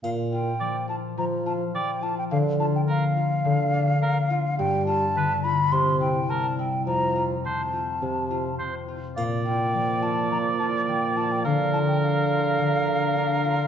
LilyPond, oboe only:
\new Staff \with { instrumentName = "Oboe" } { \time 4/4 \key bes \major \tempo 4 = 105 r4 d''4 r4 d''4 | r4 bes'4 r4 bes'4 | r4 b'4 r4 bes'4 | r4 c''4 r4 c''4 |
d''1 | bes'1 | }